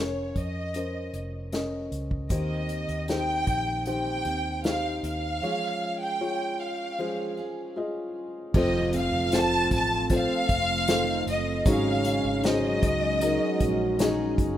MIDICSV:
0, 0, Header, 1, 9, 480
1, 0, Start_track
1, 0, Tempo, 779221
1, 1421, Time_signature, 4, 2, 24, 8
1, 8979, End_track
2, 0, Start_track
2, 0, Title_t, "Violin section"
2, 0, Program_c, 0, 48
2, 0, Note_on_c, 0, 73, 61
2, 224, Note_off_c, 0, 73, 0
2, 233, Note_on_c, 0, 75, 68
2, 707, Note_off_c, 0, 75, 0
2, 1429, Note_on_c, 0, 75, 75
2, 1880, Note_off_c, 0, 75, 0
2, 1908, Note_on_c, 0, 79, 95
2, 2385, Note_off_c, 0, 79, 0
2, 2393, Note_on_c, 0, 79, 93
2, 2842, Note_off_c, 0, 79, 0
2, 2870, Note_on_c, 0, 77, 83
2, 3089, Note_off_c, 0, 77, 0
2, 3115, Note_on_c, 0, 77, 94
2, 3683, Note_off_c, 0, 77, 0
2, 3714, Note_on_c, 0, 79, 87
2, 4068, Note_off_c, 0, 79, 0
2, 4079, Note_on_c, 0, 77, 75
2, 4550, Note_off_c, 0, 77, 0
2, 5277, Note_on_c, 0, 75, 92
2, 5493, Note_off_c, 0, 75, 0
2, 5516, Note_on_c, 0, 77, 97
2, 5749, Note_off_c, 0, 77, 0
2, 5758, Note_on_c, 0, 81, 117
2, 5987, Note_off_c, 0, 81, 0
2, 5995, Note_on_c, 0, 81, 97
2, 6212, Note_off_c, 0, 81, 0
2, 6242, Note_on_c, 0, 77, 114
2, 6927, Note_off_c, 0, 77, 0
2, 6964, Note_on_c, 0, 75, 85
2, 7177, Note_off_c, 0, 75, 0
2, 7198, Note_on_c, 0, 77, 92
2, 7670, Note_off_c, 0, 77, 0
2, 7676, Note_on_c, 0, 75, 96
2, 8844, Note_off_c, 0, 75, 0
2, 8979, End_track
3, 0, Start_track
3, 0, Title_t, "Felt piano"
3, 0, Program_c, 1, 0
3, 0, Control_c, 1, 64, 127
3, 0, Note_on_c, 1, 61, 54
3, 0, Note_on_c, 1, 70, 54
3, 0, Note_on_c, 1, 72, 67
3, 0, Note_on_c, 1, 73, 60
3, 436, Note_off_c, 1, 61, 0
3, 438, Note_off_c, 1, 70, 0
3, 439, Note_off_c, 1, 73, 0
3, 463, Note_on_c, 1, 61, 47
3, 467, Note_on_c, 1, 70, 45
3, 469, Note_off_c, 1, 72, 0
3, 469, Note_on_c, 1, 72, 55
3, 918, Note_off_c, 1, 61, 0
3, 920, Note_off_c, 1, 70, 0
3, 921, Note_off_c, 1, 72, 0
3, 940, Note_on_c, 1, 61, 60
3, 942, Note_on_c, 1, 70, 55
3, 943, Note_on_c, 1, 75, 69
3, 1396, Note_off_c, 1, 61, 0
3, 1398, Note_off_c, 1, 70, 0
3, 1398, Note_off_c, 1, 75, 0
3, 1420, Note_on_c, 1, 63, 55
3, 1421, Note_on_c, 1, 51, 48
3, 1423, Note_on_c, 1, 67, 49
3, 1424, Note_on_c, 1, 72, 62
3, 1429, Control_c, 1, 64, 0
3, 1540, Control_c, 1, 64, 127
3, 1877, Note_off_c, 1, 63, 0
3, 1878, Note_off_c, 1, 67, 0
3, 1879, Note_off_c, 1, 72, 0
3, 1902, Note_on_c, 1, 63, 59
3, 1904, Note_on_c, 1, 67, 50
3, 1908, Note_on_c, 1, 72, 64
3, 2117, Note_off_c, 1, 51, 0
3, 2357, Note_off_c, 1, 63, 0
3, 2359, Note_off_c, 1, 67, 0
3, 2361, Note_off_c, 1, 72, 0
3, 2382, Note_on_c, 1, 63, 56
3, 2384, Note_on_c, 1, 67, 55
3, 2386, Note_on_c, 1, 72, 61
3, 2838, Note_off_c, 1, 63, 0
3, 2839, Note_off_c, 1, 67, 0
3, 2839, Note_off_c, 1, 72, 0
3, 2861, Note_on_c, 1, 63, 52
3, 2862, Note_on_c, 1, 67, 52
3, 2865, Note_on_c, 1, 72, 61
3, 3317, Note_off_c, 1, 63, 0
3, 3318, Note_off_c, 1, 67, 0
3, 3319, Note_off_c, 1, 72, 0
3, 3344, Note_on_c, 1, 65, 53
3, 3345, Note_on_c, 1, 68, 53
3, 3347, Note_on_c, 1, 73, 70
3, 3349, Control_c, 1, 64, 0
3, 3458, Control_c, 1, 64, 127
3, 3798, Note_off_c, 1, 65, 0
3, 3799, Note_off_c, 1, 68, 0
3, 3800, Note_off_c, 1, 73, 0
3, 3823, Note_on_c, 1, 65, 59
3, 3824, Note_on_c, 1, 68, 56
3, 3825, Note_on_c, 1, 73, 69
3, 4278, Note_off_c, 1, 65, 0
3, 4278, Note_off_c, 1, 68, 0
3, 4279, Note_off_c, 1, 73, 0
3, 4304, Note_on_c, 1, 65, 57
3, 4307, Note_on_c, 1, 68, 55
3, 4308, Note_on_c, 1, 72, 66
3, 4759, Note_off_c, 1, 65, 0
3, 4760, Note_off_c, 1, 68, 0
3, 4761, Note_off_c, 1, 72, 0
3, 4783, Note_on_c, 1, 65, 71
3, 4786, Note_on_c, 1, 68, 59
3, 4789, Note_on_c, 1, 75, 75
3, 5238, Note_off_c, 1, 65, 0
3, 5240, Note_off_c, 1, 68, 0
3, 5241, Note_off_c, 1, 75, 0
3, 5268, Note_on_c, 1, 60, 64
3, 5269, Control_c, 1, 64, 0
3, 5270, Note_on_c, 1, 65, 57
3, 5270, Note_on_c, 1, 69, 61
3, 5273, Note_on_c, 1, 72, 77
3, 5370, Control_c, 1, 64, 127
3, 5720, Note_off_c, 1, 60, 0
3, 5721, Note_off_c, 1, 65, 0
3, 5721, Note_off_c, 1, 69, 0
3, 5723, Note_off_c, 1, 72, 0
3, 5742, Note_on_c, 1, 60, 70
3, 5746, Note_on_c, 1, 65, 63
3, 5746, Note_on_c, 1, 69, 63
3, 5748, Note_on_c, 1, 72, 75
3, 6198, Note_off_c, 1, 60, 0
3, 6199, Note_off_c, 1, 65, 0
3, 6200, Note_off_c, 1, 69, 0
3, 6200, Note_off_c, 1, 72, 0
3, 6225, Note_on_c, 1, 60, 66
3, 6226, Note_on_c, 1, 65, 58
3, 6227, Note_on_c, 1, 69, 57
3, 6228, Note_on_c, 1, 72, 82
3, 6679, Note_off_c, 1, 60, 0
3, 6679, Note_off_c, 1, 65, 0
3, 6680, Note_off_c, 1, 69, 0
3, 6681, Note_off_c, 1, 72, 0
3, 6703, Note_on_c, 1, 60, 66
3, 6704, Note_on_c, 1, 65, 52
3, 6705, Note_on_c, 1, 72, 81
3, 6706, Note_on_c, 1, 69, 59
3, 7158, Note_off_c, 1, 60, 0
3, 7159, Note_off_c, 1, 65, 0
3, 7159, Note_off_c, 1, 72, 0
3, 7160, Note_off_c, 1, 69, 0
3, 7182, Note_on_c, 1, 44, 58
3, 7182, Note_on_c, 1, 66, 63
3, 7183, Note_on_c, 1, 63, 66
3, 7184, Note_on_c, 1, 68, 70
3, 7185, Note_on_c, 1, 73, 76
3, 7188, Control_c, 1, 64, 0
3, 7291, Control_c, 1, 64, 127
3, 7638, Note_off_c, 1, 63, 0
3, 7638, Note_off_c, 1, 66, 0
3, 7639, Note_off_c, 1, 68, 0
3, 7639, Note_off_c, 1, 73, 0
3, 7660, Note_on_c, 1, 63, 75
3, 7661, Note_on_c, 1, 66, 71
3, 7662, Note_on_c, 1, 68, 67
3, 7665, Note_on_c, 1, 72, 79
3, 7877, Note_off_c, 1, 44, 0
3, 8117, Note_off_c, 1, 63, 0
3, 8117, Note_off_c, 1, 66, 0
3, 8118, Note_off_c, 1, 68, 0
3, 8119, Note_off_c, 1, 72, 0
3, 8142, Note_on_c, 1, 63, 70
3, 8143, Note_on_c, 1, 66, 58
3, 8144, Note_on_c, 1, 68, 66
3, 8146, Note_on_c, 1, 70, 74
3, 8598, Note_off_c, 1, 63, 0
3, 8598, Note_off_c, 1, 66, 0
3, 8599, Note_off_c, 1, 68, 0
3, 8600, Note_off_c, 1, 70, 0
3, 8625, Note_on_c, 1, 63, 84
3, 8627, Note_on_c, 1, 68, 68
3, 8628, Note_on_c, 1, 66, 68
3, 8628, Note_on_c, 1, 75, 86
3, 8979, Note_off_c, 1, 63, 0
3, 8979, Note_off_c, 1, 66, 0
3, 8979, Note_off_c, 1, 68, 0
3, 8979, Note_off_c, 1, 75, 0
3, 8979, End_track
4, 0, Start_track
4, 0, Title_t, "Steel-string acoustic guitar"
4, 0, Program_c, 2, 25
4, 1412, Note_on_c, 2, 51, 63
4, 1419, Note_on_c, 2, 58, 52
4, 1425, Note_on_c, 2, 60, 62
4, 1431, Note_on_c, 2, 67, 59
4, 2372, Note_off_c, 2, 51, 0
4, 2378, Note_off_c, 2, 58, 0
4, 2380, Note_on_c, 2, 51, 41
4, 2382, Note_off_c, 2, 60, 0
4, 2385, Note_off_c, 2, 67, 0
4, 2385, Note_on_c, 2, 58, 48
4, 2389, Note_on_c, 2, 60, 44
4, 2392, Note_on_c, 2, 67, 52
4, 2611, Note_off_c, 2, 67, 0
4, 2619, Note_off_c, 2, 60, 0
4, 2619, Note_on_c, 2, 67, 38
4, 2620, Note_off_c, 2, 51, 0
4, 2623, Note_off_c, 2, 58, 0
4, 2626, Note_on_c, 2, 60, 33
4, 2631, Note_on_c, 2, 58, 35
4, 3336, Note_on_c, 2, 53, 61
4, 3340, Note_off_c, 2, 58, 0
4, 3340, Note_off_c, 2, 67, 0
4, 3342, Note_on_c, 2, 56, 55
4, 3344, Note_off_c, 2, 60, 0
4, 3349, Note_on_c, 2, 61, 66
4, 3355, Note_on_c, 2, 68, 67
4, 4298, Note_off_c, 2, 56, 0
4, 4299, Note_off_c, 2, 53, 0
4, 4302, Note_on_c, 2, 53, 47
4, 4303, Note_off_c, 2, 61, 0
4, 4305, Note_on_c, 2, 56, 47
4, 4308, Note_off_c, 2, 68, 0
4, 4310, Note_on_c, 2, 61, 55
4, 4314, Note_on_c, 2, 68, 55
4, 4535, Note_off_c, 2, 68, 0
4, 4541, Note_off_c, 2, 53, 0
4, 4541, Note_off_c, 2, 61, 0
4, 4542, Note_on_c, 2, 68, 43
4, 4543, Note_off_c, 2, 56, 0
4, 4549, Note_on_c, 2, 61, 39
4, 4555, Note_on_c, 2, 56, 36
4, 5262, Note_off_c, 2, 68, 0
4, 5262, Note_on_c, 2, 41, 73
4, 5263, Note_on_c, 2, 48, 65
4, 5265, Note_off_c, 2, 56, 0
4, 5265, Note_off_c, 2, 61, 0
4, 5266, Note_on_c, 2, 53, 73
4, 5267, Note_on_c, 2, 57, 72
4, 5269, Note_on_c, 2, 60, 68
4, 5271, Note_on_c, 2, 69, 73
4, 5492, Note_off_c, 2, 69, 0
4, 5497, Note_off_c, 2, 60, 0
4, 5500, Note_on_c, 2, 69, 55
4, 5501, Note_off_c, 2, 57, 0
4, 5502, Note_off_c, 2, 41, 0
4, 5502, Note_off_c, 2, 48, 0
4, 5504, Note_off_c, 2, 53, 0
4, 5505, Note_on_c, 2, 60, 47
4, 5509, Note_on_c, 2, 57, 45
4, 5512, Note_on_c, 2, 53, 45
4, 6211, Note_off_c, 2, 53, 0
4, 6216, Note_off_c, 2, 57, 0
4, 6218, Note_on_c, 2, 53, 57
4, 6219, Note_off_c, 2, 60, 0
4, 6220, Note_off_c, 2, 69, 0
4, 6223, Note_on_c, 2, 57, 50
4, 6226, Note_on_c, 2, 60, 53
4, 6229, Note_on_c, 2, 69, 58
4, 6691, Note_off_c, 2, 53, 0
4, 6696, Note_off_c, 2, 57, 0
4, 6699, Note_on_c, 2, 53, 67
4, 6701, Note_off_c, 2, 60, 0
4, 6703, Note_on_c, 2, 57, 63
4, 6704, Note_off_c, 2, 69, 0
4, 6708, Note_on_c, 2, 60, 63
4, 6711, Note_on_c, 2, 69, 69
4, 7176, Note_on_c, 2, 44, 68
4, 7179, Note_on_c, 2, 49, 73
4, 7180, Note_off_c, 2, 53, 0
4, 7182, Note_off_c, 2, 57, 0
4, 7184, Note_on_c, 2, 54, 75
4, 7185, Note_off_c, 2, 60, 0
4, 7186, Note_off_c, 2, 69, 0
4, 7188, Note_on_c, 2, 61, 76
4, 7192, Note_on_c, 2, 63, 80
4, 7196, Note_on_c, 2, 68, 74
4, 8129, Note_off_c, 2, 54, 0
4, 8134, Note_off_c, 2, 61, 0
4, 8136, Note_on_c, 2, 54, 59
4, 8138, Note_off_c, 2, 63, 0
4, 8139, Note_off_c, 2, 44, 0
4, 8140, Note_off_c, 2, 49, 0
4, 8141, Note_on_c, 2, 61, 59
4, 8142, Note_off_c, 2, 68, 0
4, 8146, Note_on_c, 2, 63, 63
4, 8149, Note_on_c, 2, 68, 63
4, 8610, Note_off_c, 2, 54, 0
4, 8615, Note_off_c, 2, 61, 0
4, 8618, Note_off_c, 2, 63, 0
4, 8618, Note_on_c, 2, 54, 72
4, 8622, Note_off_c, 2, 68, 0
4, 8622, Note_on_c, 2, 61, 73
4, 8625, Note_on_c, 2, 63, 74
4, 8629, Note_on_c, 2, 68, 84
4, 8979, Note_off_c, 2, 54, 0
4, 8979, Note_off_c, 2, 61, 0
4, 8979, Note_off_c, 2, 63, 0
4, 8979, Note_off_c, 2, 68, 0
4, 8979, End_track
5, 0, Start_track
5, 0, Title_t, "French horn section"
5, 0, Program_c, 3, 60
5, 5257, Note_on_c, 3, 53, 75
5, 5257, Note_on_c, 3, 65, 78
5, 6435, Note_off_c, 3, 53, 0
5, 6435, Note_off_c, 3, 65, 0
5, 6701, Note_on_c, 3, 51, 65
5, 6702, Note_on_c, 3, 63, 75
5, 6936, Note_off_c, 3, 51, 0
5, 6937, Note_off_c, 3, 63, 0
5, 7182, Note_on_c, 3, 61, 96
5, 7184, Note_on_c, 3, 49, 81
5, 7887, Note_off_c, 3, 61, 0
5, 7888, Note_off_c, 3, 49, 0
5, 8137, Note_on_c, 3, 54, 72
5, 8139, Note_on_c, 3, 66, 89
5, 8845, Note_off_c, 3, 54, 0
5, 8845, Note_off_c, 3, 66, 0
5, 8979, End_track
6, 0, Start_track
6, 0, Title_t, "Ambient pad"
6, 0, Program_c, 4, 92
6, 5264, Note_on_c, 4, 57, 73
6, 5265, Note_on_c, 4, 53, 74
6, 5265, Note_on_c, 4, 60, 89
6, 7164, Note_off_c, 4, 53, 0
6, 7164, Note_off_c, 4, 57, 0
6, 7164, Note_off_c, 4, 60, 0
6, 7184, Note_on_c, 4, 54, 84
6, 7184, Note_on_c, 4, 56, 79
6, 7184, Note_on_c, 4, 61, 89
6, 8979, Note_off_c, 4, 54, 0
6, 8979, Note_off_c, 4, 56, 0
6, 8979, Note_off_c, 4, 61, 0
6, 8979, End_track
7, 0, Start_track
7, 0, Title_t, "Fingered electric bass"
7, 0, Program_c, 5, 33
7, 0, Note_on_c, 5, 29, 56
7, 195, Note_off_c, 5, 29, 0
7, 220, Note_on_c, 5, 41, 67
7, 676, Note_off_c, 5, 41, 0
7, 698, Note_on_c, 5, 29, 70
7, 1155, Note_off_c, 5, 29, 0
7, 1180, Note_on_c, 5, 37, 76
7, 1403, Note_off_c, 5, 37, 0
7, 1416, Note_on_c, 5, 39, 78
7, 1754, Note_off_c, 5, 39, 0
7, 1778, Note_on_c, 5, 39, 70
7, 2115, Note_off_c, 5, 39, 0
7, 2141, Note_on_c, 5, 34, 76
7, 2596, Note_off_c, 5, 34, 0
7, 2619, Note_on_c, 5, 39, 83
7, 3075, Note_off_c, 5, 39, 0
7, 3100, Note_on_c, 5, 39, 74
7, 3324, Note_off_c, 5, 39, 0
7, 5262, Note_on_c, 5, 29, 120
7, 5597, Note_off_c, 5, 29, 0
7, 5620, Note_on_c, 5, 29, 82
7, 5956, Note_off_c, 5, 29, 0
7, 5981, Note_on_c, 5, 33, 86
7, 6317, Note_off_c, 5, 33, 0
7, 6463, Note_on_c, 5, 29, 85
7, 6917, Note_off_c, 5, 29, 0
7, 6940, Note_on_c, 5, 30, 86
7, 7164, Note_off_c, 5, 30, 0
7, 7181, Note_on_c, 5, 32, 114
7, 7516, Note_off_c, 5, 32, 0
7, 7542, Note_on_c, 5, 32, 89
7, 7877, Note_off_c, 5, 32, 0
7, 7902, Note_on_c, 5, 37, 84
7, 8237, Note_off_c, 5, 37, 0
7, 8381, Note_on_c, 5, 34, 89
7, 8836, Note_off_c, 5, 34, 0
7, 8860, Note_on_c, 5, 30, 94
7, 8979, Note_off_c, 5, 30, 0
7, 8979, End_track
8, 0, Start_track
8, 0, Title_t, "Impact"
8, 0, Program_c, 6, 103
8, 5264, Note_on_c, 6, 60, 86
8, 7182, Note_off_c, 6, 60, 0
8, 8979, End_track
9, 0, Start_track
9, 0, Title_t, "Drums"
9, 220, Note_on_c, 9, 36, 67
9, 220, Note_on_c, 9, 42, 47
9, 282, Note_off_c, 9, 36, 0
9, 282, Note_off_c, 9, 42, 0
9, 457, Note_on_c, 9, 42, 56
9, 518, Note_off_c, 9, 42, 0
9, 700, Note_on_c, 9, 42, 50
9, 761, Note_off_c, 9, 42, 0
9, 939, Note_on_c, 9, 42, 67
9, 947, Note_on_c, 9, 38, 76
9, 1001, Note_off_c, 9, 42, 0
9, 1008, Note_off_c, 9, 38, 0
9, 1183, Note_on_c, 9, 42, 50
9, 1245, Note_off_c, 9, 42, 0
9, 1300, Note_on_c, 9, 36, 67
9, 1362, Note_off_c, 9, 36, 0
9, 1417, Note_on_c, 9, 42, 74
9, 1418, Note_on_c, 9, 36, 93
9, 1478, Note_off_c, 9, 42, 0
9, 1480, Note_off_c, 9, 36, 0
9, 1656, Note_on_c, 9, 42, 57
9, 1718, Note_off_c, 9, 42, 0
9, 1778, Note_on_c, 9, 42, 45
9, 1840, Note_off_c, 9, 42, 0
9, 1897, Note_on_c, 9, 42, 64
9, 1907, Note_on_c, 9, 38, 75
9, 1959, Note_off_c, 9, 42, 0
9, 1968, Note_off_c, 9, 38, 0
9, 2137, Note_on_c, 9, 42, 48
9, 2139, Note_on_c, 9, 36, 82
9, 2199, Note_off_c, 9, 42, 0
9, 2201, Note_off_c, 9, 36, 0
9, 2375, Note_on_c, 9, 42, 62
9, 2436, Note_off_c, 9, 42, 0
9, 2617, Note_on_c, 9, 42, 58
9, 2678, Note_off_c, 9, 42, 0
9, 2857, Note_on_c, 9, 42, 61
9, 2865, Note_on_c, 9, 38, 77
9, 2919, Note_off_c, 9, 42, 0
9, 2927, Note_off_c, 9, 38, 0
9, 3103, Note_on_c, 9, 42, 59
9, 3165, Note_off_c, 9, 42, 0
9, 5261, Note_on_c, 9, 49, 87
9, 5262, Note_on_c, 9, 36, 119
9, 5323, Note_off_c, 9, 49, 0
9, 5324, Note_off_c, 9, 36, 0
9, 5499, Note_on_c, 9, 42, 74
9, 5561, Note_off_c, 9, 42, 0
9, 5739, Note_on_c, 9, 42, 83
9, 5749, Note_on_c, 9, 38, 92
9, 5801, Note_off_c, 9, 42, 0
9, 5810, Note_off_c, 9, 38, 0
9, 5981, Note_on_c, 9, 42, 70
9, 5983, Note_on_c, 9, 36, 91
9, 6043, Note_off_c, 9, 42, 0
9, 6044, Note_off_c, 9, 36, 0
9, 6219, Note_on_c, 9, 42, 79
9, 6223, Note_on_c, 9, 36, 92
9, 6281, Note_off_c, 9, 42, 0
9, 6284, Note_off_c, 9, 36, 0
9, 6461, Note_on_c, 9, 42, 74
9, 6462, Note_on_c, 9, 36, 91
9, 6523, Note_off_c, 9, 42, 0
9, 6524, Note_off_c, 9, 36, 0
9, 6699, Note_on_c, 9, 42, 96
9, 6707, Note_on_c, 9, 38, 88
9, 6761, Note_off_c, 9, 42, 0
9, 6768, Note_off_c, 9, 38, 0
9, 6944, Note_on_c, 9, 42, 71
9, 7006, Note_off_c, 9, 42, 0
9, 7181, Note_on_c, 9, 36, 122
9, 7182, Note_on_c, 9, 42, 92
9, 7243, Note_off_c, 9, 36, 0
9, 7243, Note_off_c, 9, 42, 0
9, 7420, Note_on_c, 9, 42, 74
9, 7481, Note_off_c, 9, 42, 0
9, 7660, Note_on_c, 9, 42, 82
9, 7669, Note_on_c, 9, 38, 107
9, 7721, Note_off_c, 9, 42, 0
9, 7731, Note_off_c, 9, 38, 0
9, 7902, Note_on_c, 9, 36, 99
9, 7902, Note_on_c, 9, 42, 62
9, 7963, Note_off_c, 9, 36, 0
9, 7963, Note_off_c, 9, 42, 0
9, 8138, Note_on_c, 9, 42, 86
9, 8200, Note_off_c, 9, 42, 0
9, 8380, Note_on_c, 9, 42, 70
9, 8381, Note_on_c, 9, 36, 88
9, 8441, Note_off_c, 9, 42, 0
9, 8443, Note_off_c, 9, 36, 0
9, 8618, Note_on_c, 9, 42, 98
9, 8626, Note_on_c, 9, 38, 95
9, 8680, Note_off_c, 9, 42, 0
9, 8687, Note_off_c, 9, 38, 0
9, 8859, Note_on_c, 9, 36, 99
9, 8862, Note_on_c, 9, 42, 73
9, 8921, Note_off_c, 9, 36, 0
9, 8923, Note_off_c, 9, 42, 0
9, 8979, End_track
0, 0, End_of_file